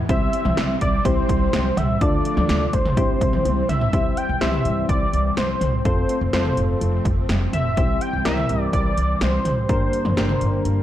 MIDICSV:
0, 0, Header, 1, 6, 480
1, 0, Start_track
1, 0, Tempo, 480000
1, 92, Time_signature, 4, 2, 24, 8
1, 10829, End_track
2, 0, Start_track
2, 0, Title_t, "Analog synth lead"
2, 0, Program_c, 0, 81
2, 92, Note_on_c, 0, 76, 107
2, 772, Note_off_c, 0, 76, 0
2, 813, Note_on_c, 0, 74, 93
2, 1052, Note_on_c, 0, 72, 97
2, 1067, Note_off_c, 0, 74, 0
2, 1772, Note_on_c, 0, 76, 94
2, 1787, Note_off_c, 0, 72, 0
2, 2012, Note_on_c, 0, 74, 97
2, 2027, Note_off_c, 0, 76, 0
2, 2732, Note_on_c, 0, 72, 89
2, 2746, Note_off_c, 0, 74, 0
2, 3685, Note_off_c, 0, 72, 0
2, 3691, Note_on_c, 0, 76, 109
2, 4172, Note_on_c, 0, 79, 102
2, 4187, Note_off_c, 0, 76, 0
2, 4406, Note_off_c, 0, 79, 0
2, 4412, Note_on_c, 0, 76, 109
2, 4858, Note_off_c, 0, 76, 0
2, 4891, Note_on_c, 0, 74, 96
2, 5338, Note_off_c, 0, 74, 0
2, 5373, Note_on_c, 0, 72, 89
2, 5819, Note_off_c, 0, 72, 0
2, 5852, Note_on_c, 0, 72, 91
2, 6299, Note_off_c, 0, 72, 0
2, 6334, Note_on_c, 0, 72, 82
2, 6780, Note_off_c, 0, 72, 0
2, 7533, Note_on_c, 0, 76, 108
2, 8013, Note_on_c, 0, 79, 104
2, 8028, Note_off_c, 0, 76, 0
2, 8247, Note_off_c, 0, 79, 0
2, 8253, Note_on_c, 0, 76, 104
2, 8699, Note_off_c, 0, 76, 0
2, 8732, Note_on_c, 0, 74, 100
2, 9213, Note_on_c, 0, 72, 91
2, 9228, Note_off_c, 0, 74, 0
2, 9686, Note_off_c, 0, 72, 0
2, 9692, Note_on_c, 0, 72, 90
2, 10139, Note_off_c, 0, 72, 0
2, 10173, Note_on_c, 0, 72, 77
2, 10619, Note_off_c, 0, 72, 0
2, 10829, End_track
3, 0, Start_track
3, 0, Title_t, "Synth keys"
3, 0, Program_c, 1, 88
3, 92, Note_on_c, 1, 67, 69
3, 93, Note_on_c, 1, 60, 72
3, 93, Note_on_c, 1, 64, 68
3, 93, Note_on_c, 1, 72, 83
3, 743, Note_off_c, 1, 60, 0
3, 743, Note_off_c, 1, 64, 0
3, 743, Note_off_c, 1, 67, 0
3, 743, Note_off_c, 1, 72, 0
3, 1051, Note_on_c, 1, 67, 71
3, 1052, Note_on_c, 1, 60, 78
3, 1052, Note_on_c, 1, 64, 72
3, 1052, Note_on_c, 1, 72, 84
3, 1702, Note_off_c, 1, 67, 0
3, 1703, Note_off_c, 1, 60, 0
3, 1703, Note_off_c, 1, 64, 0
3, 1703, Note_off_c, 1, 72, 0
3, 2013, Note_on_c, 1, 62, 75
3, 2013, Note_on_c, 1, 65, 67
3, 2013, Note_on_c, 1, 69, 68
3, 2013, Note_on_c, 1, 74, 84
3, 2663, Note_off_c, 1, 62, 0
3, 2663, Note_off_c, 1, 65, 0
3, 2663, Note_off_c, 1, 69, 0
3, 2663, Note_off_c, 1, 74, 0
3, 2973, Note_on_c, 1, 60, 78
3, 2973, Note_on_c, 1, 64, 71
3, 2973, Note_on_c, 1, 67, 73
3, 2973, Note_on_c, 1, 72, 86
3, 3623, Note_off_c, 1, 60, 0
3, 3623, Note_off_c, 1, 64, 0
3, 3623, Note_off_c, 1, 67, 0
3, 3623, Note_off_c, 1, 72, 0
3, 3932, Note_on_c, 1, 60, 71
3, 3932, Note_on_c, 1, 64, 63
3, 3932, Note_on_c, 1, 67, 66
3, 3932, Note_on_c, 1, 72, 78
3, 4258, Note_off_c, 1, 60, 0
3, 4258, Note_off_c, 1, 64, 0
3, 4258, Note_off_c, 1, 67, 0
3, 4258, Note_off_c, 1, 72, 0
3, 4411, Note_on_c, 1, 60, 73
3, 4412, Note_on_c, 1, 64, 68
3, 4412, Note_on_c, 1, 67, 67
3, 4412, Note_on_c, 1, 72, 83
3, 5062, Note_off_c, 1, 60, 0
3, 5062, Note_off_c, 1, 64, 0
3, 5063, Note_off_c, 1, 67, 0
3, 5063, Note_off_c, 1, 72, 0
3, 5852, Note_on_c, 1, 65, 65
3, 5853, Note_on_c, 1, 60, 72
3, 5853, Note_on_c, 1, 69, 66
3, 5853, Note_on_c, 1, 72, 78
3, 6178, Note_off_c, 1, 60, 0
3, 6178, Note_off_c, 1, 65, 0
3, 6178, Note_off_c, 1, 69, 0
3, 6178, Note_off_c, 1, 72, 0
3, 6332, Note_on_c, 1, 60, 73
3, 6332, Note_on_c, 1, 65, 68
3, 6332, Note_on_c, 1, 69, 67
3, 6332, Note_on_c, 1, 72, 81
3, 6982, Note_off_c, 1, 69, 0
3, 6982, Note_off_c, 1, 72, 0
3, 6983, Note_off_c, 1, 60, 0
3, 6983, Note_off_c, 1, 65, 0
3, 7773, Note_on_c, 1, 60, 70
3, 7773, Note_on_c, 1, 64, 64
3, 7773, Note_on_c, 1, 67, 66
3, 7773, Note_on_c, 1, 72, 81
3, 8098, Note_off_c, 1, 60, 0
3, 8098, Note_off_c, 1, 64, 0
3, 8098, Note_off_c, 1, 67, 0
3, 8098, Note_off_c, 1, 72, 0
3, 8253, Note_on_c, 1, 60, 74
3, 8253, Note_on_c, 1, 64, 68
3, 8253, Note_on_c, 1, 67, 66
3, 8254, Note_on_c, 1, 70, 81
3, 8903, Note_off_c, 1, 60, 0
3, 8903, Note_off_c, 1, 64, 0
3, 8903, Note_off_c, 1, 67, 0
3, 8903, Note_off_c, 1, 70, 0
3, 9693, Note_on_c, 1, 58, 70
3, 9693, Note_on_c, 1, 62, 65
3, 9693, Note_on_c, 1, 67, 65
3, 9693, Note_on_c, 1, 70, 80
3, 10018, Note_off_c, 1, 58, 0
3, 10018, Note_off_c, 1, 62, 0
3, 10018, Note_off_c, 1, 67, 0
3, 10018, Note_off_c, 1, 70, 0
3, 10173, Note_on_c, 1, 58, 70
3, 10173, Note_on_c, 1, 62, 69
3, 10173, Note_on_c, 1, 67, 68
3, 10173, Note_on_c, 1, 70, 82
3, 10823, Note_off_c, 1, 58, 0
3, 10823, Note_off_c, 1, 62, 0
3, 10823, Note_off_c, 1, 67, 0
3, 10823, Note_off_c, 1, 70, 0
3, 10829, End_track
4, 0, Start_track
4, 0, Title_t, "String machine"
4, 0, Program_c, 2, 50
4, 0, Note_on_c, 2, 52, 83
4, 94, Note_on_c, 2, 55, 75
4, 94, Note_on_c, 2, 60, 89
4, 1972, Note_off_c, 2, 52, 0
4, 1994, Note_off_c, 2, 55, 0
4, 1994, Note_off_c, 2, 60, 0
4, 2012, Note_on_c, 2, 57, 74
4, 2013, Note_on_c, 2, 53, 79
4, 2013, Note_on_c, 2, 62, 84
4, 2963, Note_off_c, 2, 53, 0
4, 2963, Note_off_c, 2, 57, 0
4, 2963, Note_off_c, 2, 62, 0
4, 2972, Note_on_c, 2, 60, 85
4, 2973, Note_on_c, 2, 52, 78
4, 2973, Note_on_c, 2, 55, 73
4, 3920, Note_off_c, 2, 52, 0
4, 3920, Note_off_c, 2, 55, 0
4, 3922, Note_off_c, 2, 60, 0
4, 3932, Note_on_c, 2, 55, 72
4, 3933, Note_on_c, 2, 52, 77
4, 3933, Note_on_c, 2, 60, 86
4, 5833, Note_off_c, 2, 52, 0
4, 5833, Note_off_c, 2, 55, 0
4, 5853, Note_on_c, 2, 57, 72
4, 5854, Note_on_c, 2, 53, 77
4, 7754, Note_off_c, 2, 53, 0
4, 7754, Note_off_c, 2, 57, 0
4, 7774, Note_on_c, 2, 52, 77
4, 7775, Note_on_c, 2, 55, 73
4, 9653, Note_off_c, 2, 60, 0
4, 9674, Note_off_c, 2, 52, 0
4, 9674, Note_off_c, 2, 55, 0
4, 9694, Note_on_c, 2, 50, 79
4, 9694, Note_on_c, 2, 55, 71
4, 9694, Note_on_c, 2, 58, 87
4, 10829, Note_off_c, 2, 50, 0
4, 10829, Note_off_c, 2, 55, 0
4, 10829, Note_off_c, 2, 58, 0
4, 10829, End_track
5, 0, Start_track
5, 0, Title_t, "Upright bass"
5, 0, Program_c, 3, 32
5, 93, Note_on_c, 3, 36, 115
5, 261, Note_off_c, 3, 36, 0
5, 454, Note_on_c, 3, 36, 106
5, 537, Note_off_c, 3, 36, 0
5, 574, Note_on_c, 3, 36, 100
5, 741, Note_off_c, 3, 36, 0
5, 813, Note_on_c, 3, 36, 104
5, 981, Note_off_c, 3, 36, 0
5, 1051, Note_on_c, 3, 36, 109
5, 1220, Note_off_c, 3, 36, 0
5, 1292, Note_on_c, 3, 36, 104
5, 1460, Note_off_c, 3, 36, 0
5, 1534, Note_on_c, 3, 36, 118
5, 1702, Note_off_c, 3, 36, 0
5, 1773, Note_on_c, 3, 36, 97
5, 1941, Note_off_c, 3, 36, 0
5, 2013, Note_on_c, 3, 38, 106
5, 2181, Note_off_c, 3, 38, 0
5, 2373, Note_on_c, 3, 38, 100
5, 2457, Note_off_c, 3, 38, 0
5, 2493, Note_on_c, 3, 38, 102
5, 2661, Note_off_c, 3, 38, 0
5, 2733, Note_on_c, 3, 38, 94
5, 2971, Note_off_c, 3, 38, 0
5, 2971, Note_on_c, 3, 36, 101
5, 3139, Note_off_c, 3, 36, 0
5, 3212, Note_on_c, 3, 36, 103
5, 3380, Note_off_c, 3, 36, 0
5, 3453, Note_on_c, 3, 36, 97
5, 3621, Note_off_c, 3, 36, 0
5, 3692, Note_on_c, 3, 36, 98
5, 3860, Note_off_c, 3, 36, 0
5, 3933, Note_on_c, 3, 36, 99
5, 4100, Note_off_c, 3, 36, 0
5, 4293, Note_on_c, 3, 36, 95
5, 4377, Note_off_c, 3, 36, 0
5, 4413, Note_on_c, 3, 36, 89
5, 4581, Note_off_c, 3, 36, 0
5, 4653, Note_on_c, 3, 36, 97
5, 4821, Note_off_c, 3, 36, 0
5, 4891, Note_on_c, 3, 36, 98
5, 5059, Note_off_c, 3, 36, 0
5, 5133, Note_on_c, 3, 36, 94
5, 5301, Note_off_c, 3, 36, 0
5, 5372, Note_on_c, 3, 36, 105
5, 5540, Note_off_c, 3, 36, 0
5, 5612, Note_on_c, 3, 36, 86
5, 5780, Note_off_c, 3, 36, 0
5, 5853, Note_on_c, 3, 29, 101
5, 6021, Note_off_c, 3, 29, 0
5, 6213, Note_on_c, 3, 29, 96
5, 6297, Note_off_c, 3, 29, 0
5, 6333, Note_on_c, 3, 29, 95
5, 6501, Note_off_c, 3, 29, 0
5, 6572, Note_on_c, 3, 29, 97
5, 6740, Note_off_c, 3, 29, 0
5, 6814, Note_on_c, 3, 29, 97
5, 6982, Note_off_c, 3, 29, 0
5, 7053, Note_on_c, 3, 29, 95
5, 7221, Note_off_c, 3, 29, 0
5, 7293, Note_on_c, 3, 29, 94
5, 7461, Note_off_c, 3, 29, 0
5, 7532, Note_on_c, 3, 29, 92
5, 7773, Note_on_c, 3, 36, 100
5, 7788, Note_off_c, 3, 29, 0
5, 7941, Note_off_c, 3, 36, 0
5, 8133, Note_on_c, 3, 36, 93
5, 8217, Note_off_c, 3, 36, 0
5, 8252, Note_on_c, 3, 36, 100
5, 8420, Note_off_c, 3, 36, 0
5, 8493, Note_on_c, 3, 36, 97
5, 8661, Note_off_c, 3, 36, 0
5, 8732, Note_on_c, 3, 36, 90
5, 8900, Note_off_c, 3, 36, 0
5, 8972, Note_on_c, 3, 36, 95
5, 9140, Note_off_c, 3, 36, 0
5, 9212, Note_on_c, 3, 36, 100
5, 9380, Note_off_c, 3, 36, 0
5, 9452, Note_on_c, 3, 36, 92
5, 9620, Note_off_c, 3, 36, 0
5, 9693, Note_on_c, 3, 31, 95
5, 9861, Note_off_c, 3, 31, 0
5, 10052, Note_on_c, 3, 31, 102
5, 10136, Note_off_c, 3, 31, 0
5, 10172, Note_on_c, 3, 31, 93
5, 10340, Note_off_c, 3, 31, 0
5, 10412, Note_on_c, 3, 31, 97
5, 10580, Note_off_c, 3, 31, 0
5, 10652, Note_on_c, 3, 31, 92
5, 10820, Note_off_c, 3, 31, 0
5, 10829, End_track
6, 0, Start_track
6, 0, Title_t, "Drums"
6, 93, Note_on_c, 9, 36, 114
6, 93, Note_on_c, 9, 42, 74
6, 193, Note_off_c, 9, 36, 0
6, 193, Note_off_c, 9, 42, 0
6, 332, Note_on_c, 9, 42, 85
6, 432, Note_off_c, 9, 42, 0
6, 452, Note_on_c, 9, 47, 101
6, 552, Note_off_c, 9, 47, 0
6, 573, Note_on_c, 9, 38, 121
6, 576, Note_on_c, 9, 42, 71
6, 673, Note_off_c, 9, 38, 0
6, 676, Note_off_c, 9, 42, 0
6, 813, Note_on_c, 9, 36, 85
6, 813, Note_on_c, 9, 42, 85
6, 913, Note_off_c, 9, 36, 0
6, 913, Note_off_c, 9, 42, 0
6, 1051, Note_on_c, 9, 36, 97
6, 1053, Note_on_c, 9, 42, 86
6, 1151, Note_off_c, 9, 36, 0
6, 1153, Note_off_c, 9, 42, 0
6, 1292, Note_on_c, 9, 36, 100
6, 1295, Note_on_c, 9, 42, 81
6, 1392, Note_off_c, 9, 36, 0
6, 1395, Note_off_c, 9, 42, 0
6, 1532, Note_on_c, 9, 38, 112
6, 1535, Note_on_c, 9, 42, 78
6, 1632, Note_off_c, 9, 38, 0
6, 1635, Note_off_c, 9, 42, 0
6, 1771, Note_on_c, 9, 45, 89
6, 1771, Note_on_c, 9, 56, 67
6, 1774, Note_on_c, 9, 42, 85
6, 1871, Note_off_c, 9, 45, 0
6, 1871, Note_off_c, 9, 56, 0
6, 1874, Note_off_c, 9, 42, 0
6, 2013, Note_on_c, 9, 36, 107
6, 2013, Note_on_c, 9, 42, 75
6, 2113, Note_off_c, 9, 36, 0
6, 2113, Note_off_c, 9, 42, 0
6, 2252, Note_on_c, 9, 42, 85
6, 2352, Note_off_c, 9, 42, 0
6, 2370, Note_on_c, 9, 47, 106
6, 2470, Note_off_c, 9, 47, 0
6, 2491, Note_on_c, 9, 38, 117
6, 2494, Note_on_c, 9, 42, 75
6, 2591, Note_off_c, 9, 38, 0
6, 2594, Note_off_c, 9, 42, 0
6, 2733, Note_on_c, 9, 36, 87
6, 2733, Note_on_c, 9, 42, 82
6, 2833, Note_off_c, 9, 36, 0
6, 2833, Note_off_c, 9, 42, 0
6, 2854, Note_on_c, 9, 45, 91
6, 2954, Note_off_c, 9, 45, 0
6, 2971, Note_on_c, 9, 36, 99
6, 2972, Note_on_c, 9, 42, 84
6, 3071, Note_off_c, 9, 36, 0
6, 3072, Note_off_c, 9, 42, 0
6, 3212, Note_on_c, 9, 36, 96
6, 3214, Note_on_c, 9, 42, 83
6, 3312, Note_off_c, 9, 36, 0
6, 3314, Note_off_c, 9, 42, 0
6, 3332, Note_on_c, 9, 47, 77
6, 3432, Note_off_c, 9, 47, 0
6, 3452, Note_on_c, 9, 48, 58
6, 3454, Note_on_c, 9, 42, 79
6, 3552, Note_off_c, 9, 48, 0
6, 3554, Note_off_c, 9, 42, 0
6, 3692, Note_on_c, 9, 45, 91
6, 3694, Note_on_c, 9, 42, 84
6, 3792, Note_off_c, 9, 45, 0
6, 3794, Note_off_c, 9, 42, 0
6, 3812, Note_on_c, 9, 43, 96
6, 3912, Note_off_c, 9, 43, 0
6, 3932, Note_on_c, 9, 42, 69
6, 3933, Note_on_c, 9, 36, 106
6, 4032, Note_off_c, 9, 42, 0
6, 4033, Note_off_c, 9, 36, 0
6, 4172, Note_on_c, 9, 42, 85
6, 4272, Note_off_c, 9, 42, 0
6, 4412, Note_on_c, 9, 38, 113
6, 4414, Note_on_c, 9, 42, 69
6, 4512, Note_off_c, 9, 38, 0
6, 4514, Note_off_c, 9, 42, 0
6, 4530, Note_on_c, 9, 45, 94
6, 4630, Note_off_c, 9, 45, 0
6, 4652, Note_on_c, 9, 42, 77
6, 4752, Note_off_c, 9, 42, 0
6, 4891, Note_on_c, 9, 36, 94
6, 4892, Note_on_c, 9, 42, 80
6, 4991, Note_off_c, 9, 36, 0
6, 4992, Note_off_c, 9, 42, 0
6, 5134, Note_on_c, 9, 42, 77
6, 5234, Note_off_c, 9, 42, 0
6, 5371, Note_on_c, 9, 38, 101
6, 5374, Note_on_c, 9, 42, 77
6, 5471, Note_off_c, 9, 38, 0
6, 5474, Note_off_c, 9, 42, 0
6, 5610, Note_on_c, 9, 45, 88
6, 5614, Note_on_c, 9, 42, 80
6, 5710, Note_off_c, 9, 45, 0
6, 5714, Note_off_c, 9, 42, 0
6, 5853, Note_on_c, 9, 36, 101
6, 5853, Note_on_c, 9, 42, 70
6, 5953, Note_off_c, 9, 36, 0
6, 5953, Note_off_c, 9, 42, 0
6, 6092, Note_on_c, 9, 42, 84
6, 6192, Note_off_c, 9, 42, 0
6, 6333, Note_on_c, 9, 38, 112
6, 6335, Note_on_c, 9, 42, 70
6, 6433, Note_off_c, 9, 38, 0
6, 6435, Note_off_c, 9, 42, 0
6, 6451, Note_on_c, 9, 45, 94
6, 6551, Note_off_c, 9, 45, 0
6, 6573, Note_on_c, 9, 42, 78
6, 6673, Note_off_c, 9, 42, 0
6, 6814, Note_on_c, 9, 42, 79
6, 6914, Note_off_c, 9, 42, 0
6, 7052, Note_on_c, 9, 36, 93
6, 7055, Note_on_c, 9, 42, 77
6, 7152, Note_off_c, 9, 36, 0
6, 7155, Note_off_c, 9, 42, 0
6, 7292, Note_on_c, 9, 38, 105
6, 7294, Note_on_c, 9, 42, 75
6, 7392, Note_off_c, 9, 38, 0
6, 7394, Note_off_c, 9, 42, 0
6, 7531, Note_on_c, 9, 45, 88
6, 7534, Note_on_c, 9, 42, 82
6, 7631, Note_off_c, 9, 45, 0
6, 7634, Note_off_c, 9, 42, 0
6, 7772, Note_on_c, 9, 42, 70
6, 7773, Note_on_c, 9, 36, 105
6, 7873, Note_off_c, 9, 36, 0
6, 7873, Note_off_c, 9, 42, 0
6, 8012, Note_on_c, 9, 42, 85
6, 8112, Note_off_c, 9, 42, 0
6, 8252, Note_on_c, 9, 38, 110
6, 8254, Note_on_c, 9, 42, 71
6, 8352, Note_off_c, 9, 38, 0
6, 8354, Note_off_c, 9, 42, 0
6, 8371, Note_on_c, 9, 45, 92
6, 8471, Note_off_c, 9, 45, 0
6, 8493, Note_on_c, 9, 42, 81
6, 8593, Note_off_c, 9, 42, 0
6, 8732, Note_on_c, 9, 36, 94
6, 8734, Note_on_c, 9, 42, 81
6, 8832, Note_off_c, 9, 36, 0
6, 8834, Note_off_c, 9, 42, 0
6, 8975, Note_on_c, 9, 42, 77
6, 9075, Note_off_c, 9, 42, 0
6, 9212, Note_on_c, 9, 38, 106
6, 9214, Note_on_c, 9, 42, 77
6, 9312, Note_off_c, 9, 38, 0
6, 9314, Note_off_c, 9, 42, 0
6, 9450, Note_on_c, 9, 45, 90
6, 9454, Note_on_c, 9, 42, 80
6, 9550, Note_off_c, 9, 45, 0
6, 9554, Note_off_c, 9, 42, 0
6, 9693, Note_on_c, 9, 36, 105
6, 9693, Note_on_c, 9, 42, 69
6, 9793, Note_off_c, 9, 36, 0
6, 9793, Note_off_c, 9, 42, 0
6, 9932, Note_on_c, 9, 42, 84
6, 10032, Note_off_c, 9, 42, 0
6, 10050, Note_on_c, 9, 47, 97
6, 10150, Note_off_c, 9, 47, 0
6, 10172, Note_on_c, 9, 38, 114
6, 10174, Note_on_c, 9, 42, 69
6, 10272, Note_off_c, 9, 38, 0
6, 10274, Note_off_c, 9, 42, 0
6, 10290, Note_on_c, 9, 45, 98
6, 10390, Note_off_c, 9, 45, 0
6, 10412, Note_on_c, 9, 42, 77
6, 10512, Note_off_c, 9, 42, 0
6, 10652, Note_on_c, 9, 42, 80
6, 10752, Note_off_c, 9, 42, 0
6, 10829, End_track
0, 0, End_of_file